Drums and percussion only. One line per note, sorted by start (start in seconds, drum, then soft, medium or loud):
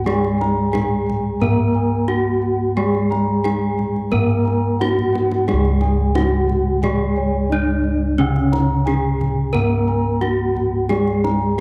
0.07 kendang high medium
0.25 kendang slap soft
0.41 kendang slap soft
0.41 kendang high medium
0.75 kendang high medium
0.75 kendang low medium
1.09 kendang slap soft
1.09 kendang low medium
1.43 kendang slap soft
1.43 kendang low medium
2.94 kendang slap soft
3.12 kendang slap soft
3.12 kendang high soft
3.45 kendang slap soft
3.45 kendang high medium
3.79 kendang slap soft
3.79 kendang low soft
3.96 kendang slap soft
4.13 kendang slap soft
4.13 kendang low medium
4.31 kendang slap soft
4.48 kendang slap soft
4.82 kendang high medium
4.99 kendang low medium
5.15 kendang high medium
5.32 kendang high medium
5.49 kendang high medium
5.65 kendang slap soft
5.81 kendang slap soft
5.81 kendang high medium
6.15 kendang high medium
6.15 kendang low medium
6.49 kendang slap soft
6.49 kendang low medium
6.83 kendang slap soft
6.83 kendang low medium
8.36 kendang slap soft
8.53 kendang slap soft
8.53 kendang high soft
8.87 kendang high medium
9.21 kendang slap soft
9.21 kendang low medium
9.54 kendang slap soft
9.54 kendang low medium
10.22 kendang high soft
10.57 kendang low medium
10.90 kendang high soft
11.07 kendang slap soft
11.24 kendang slap soft
11.24 kendang high medium